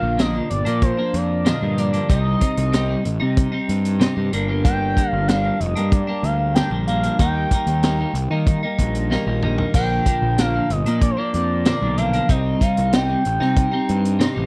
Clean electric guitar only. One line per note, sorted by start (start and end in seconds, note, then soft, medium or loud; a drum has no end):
0.00 0.16 A#2 medium
0.00 0.17 D3 medium
0.00 0.18 F3 medium
0.00 0.18 A#3 medium
0.00 0.18 D4 medium
0.17 0.66 A#2 medium
0.17 0.49 D3 medium
0.17 0.35 F3 medium
0.17 0.34 A#3 medium
0.17 0.33 D4 medium
0.34 0.49 F3 medium
0.34 0.49 A#3 medium
0.34 0.49 D4 medium
0.50 muted clean electric guitar stroke soft
0.65 0.98 F3 soft
0.65 0.97 A#3 medium
0.65 0.96 D4 medium
0.97 1.45 F3 soft
0.97 1.45 A#3 medium
0.97 1.46 D4 medium
1.45 1.93 A#2 medium
1.45 1.76 D3 medium
1.45 1.62 F3 medium
1.45 1.61 A#3 medium
1.45 1.60 D4 medium
1.61 1.76 F3 medium
1.61 1.77 A#3 medium
1.61 1.78 D4 medium
1.77 2.07 D3 medium
1.77 1.94 F3 medium
1.77 1.93 A#3 medium
1.77 1.92 D4 medium
1.93 2.08 F3 medium
1.93 2.08 A#3 medium
1.93 2.07 D4 medium
2.09 2.39 C3 medium
2.09 2.41 G3 medium
2.09 2.41 C4 medium
2.09 2.42 D#4 medium
2.40 2.71 C3 medium
2.40 2.73 G3 medium
2.40 2.73 C4 medium
2.40 2.74 D#4 medium
2.72 3.03 C3 medium
2.72 2.90 G3 medium
2.72 2.88 C4 medium
2.72 2.87 D#4 medium
2.88 3.04 G3 medium
2.88 3.04 C4 medium
2.88 3.04 D#4 medium
3.04 muted clean electric guitar stroke soft
3.20 3.54 G3 soft
3.20 3.52 C4 medium
3.20 3.51 D#4 medium
3.52 4.00 G3 medium
3.52 4.00 C4 medium
3.52 4.01 D#4 medium
4.00 4.30 C3 medium
4.00 4.18 G3 medium
4.00 4.16 C4 loud
4.00 4.15 D#4 loud
4.16 4.33 G3 medium
4.16 4.31 C4 medium
4.16 4.30 D#4 medium
4.32 4.63 G2 medium
4.32 4.63 D3 medium
4.32 4.50 G3 medium
4.32 4.49 A#3 medium
4.32 4.47 D4 medium
4.48 4.65 G3 medium
4.48 4.65 A#3 medium
4.48 4.65 D4 medium
4.64 5.27 G2 medium
4.64 4.95 D3 medium
4.64 4.97 G3 medium
4.64 4.98 A#3 medium
4.64 4.98 D4 medium
4.97 5.27 D3 medium
4.97 5.29 G3 medium
4.97 5.29 A#3 medium
4.97 5.29 D4 medium
5.28 5.76 G2 medium
5.28 5.59 D3 medium
5.28 5.46 G3 medium
5.28 5.45 A#3 loud
5.28 5.43 D4 loud
5.44 5.60 G3 medium
5.44 5.60 A#3 medium
5.44 5.60 D4 medium
5.60 muted clean electric guitar stroke soft
5.76 6.08 G3 medium
5.76 6.08 A#3 medium
5.76 6.06 D4 medium
6.07 6.55 G3 medium
6.07 6.57 A#3 medium
6.07 6.56 D4 medium
6.55 7.03 G2 medium
6.55 6.87 D3 medium
6.55 6.72 G3 medium
6.55 6.72 A#3 medium
6.55 6.70 D4 medium
6.71 6.87 G3 medium
6.71 6.89 A#3 medium
6.71 6.89 D4 medium
6.88 7.18 D3 medium
6.88 7.04 G3 medium
6.88 7.04 A#3 medium
6.88 7.02 D4 medium
7.03 7.18 G3 medium
7.03 7.20 A#3 medium
7.03 7.17 D4 medium
7.19 7.50 D#3 medium
7.19 7.51 G3 medium
7.19 7.53 A#3 medium
7.19 7.52 D#4 loud
7.51 7.81 D#3 medium
7.51 7.82 G3 medium
7.51 7.84 A#3 medium
7.51 7.84 D#4 medium
7.83 8.14 D#3 medium
7.83 8.00 G3 medium
7.83 8.00 A#3 medium
7.83 7.98 D#4 medium
7.99 8.14 G3 medium
7.99 8.15 A#3 medium
7.99 8.15 D#4 medium
8.15 muted clean electric guitar stroke soft
8.31 8.64 G3 medium
8.31 8.63 A#3 medium
8.31 8.62 D#4 medium
8.63 9.10 G3 medium
8.63 9.11 A#3 medium
8.63 9.11 D#4 medium
9.10 9.41 D#3 medium
9.10 9.27 G3 medium
9.10 9.26 A#3 medium
9.10 9.25 D#4 medium
9.26 9.42 G3 medium
9.26 9.43 A#3 medium
9.26 9.43 D#4 medium
9.42 9.72 D#3 medium
9.42 9.59 G3 medium
9.42 9.58 A#3 medium
9.42 9.57 D#4 medium
9.58 9.73 G3 medium
9.58 9.73 A#3 medium
9.58 9.72 D#4 medium
9.74 10.37 A#2 medium
9.74 10.05 D3 medium
9.74 10.06 F3 medium
9.74 10.06 A#3 medium
9.74 10.07 D4 medium
10.06 10.37 D3 medium
10.06 10.38 F3 medium
10.06 10.38 A#3 medium
10.06 10.39 D4 medium
10.38 10.86 A#2 medium
10.38 10.69 D3 medium
10.38 10.55 F3 medium
10.38 10.54 A#3 loud
10.38 10.53 D4 loud
10.54 10.70 F3 medium
10.54 10.70 A#3 medium
10.54 10.70 D4 medium
10.71 muted clean electric guitar stroke soft
10.86 11.18 F3 medium
10.86 11.17 A#3 medium
10.86 11.16 D4 medium
11.17 11.65 F3 medium
11.17 11.65 A#3 medium
11.17 11.66 D4 medium
11.65 12.13 A#2 medium
11.65 11.96 D3 medium
11.65 11.82 F3 loud
11.65 11.81 A#3 medium
11.65 11.80 D4 loud
11.81 11.96 F3 medium
11.81 11.97 A#3 medium
11.81 11.98 D4 medium
11.97 12.27 D3 medium
11.97 12.14 F3 medium
11.97 12.13 A#3 medium
11.97 12.12 D4 medium
12.13 12.28 F3 medium
12.13 12.28 A#3 medium
12.13 12.27 D4 medium
12.28 12.59 C3 medium
12.28 12.61 G3 medium
12.28 12.61 C4 medium
12.28 12.62 D#4 medium
12.61 12.91 C3 medium
12.61 12.93 G3 medium
12.61 12.93 C4 medium
12.61 12.94 D#4 medium
12.93 13.23 C3 medium
12.93 13.10 G3 medium
12.93 13.08 C4 medium
12.93 13.07 D#4 medium
13.08 13.25 G3 medium
13.08 13.24 C4 medium
13.08 13.24 D#4 medium
13.25 muted clean electric guitar stroke soft
13.40 13.73 G3 soft
13.40 13.72 C4 medium
13.40 13.70 D#4 medium
13.71 14.20 G3 medium
13.71 14.20 C4 medium
13.71 14.20 D#4 medium
14.19 14.46 C3 medium
14.19 14.37 G3 medium
14.19 14.35 C4 loud
14.19 14.34 D#4 loud
14.35 14.46 G3 medium
14.35 14.46 C4 medium
14.35 14.46 D#4 medium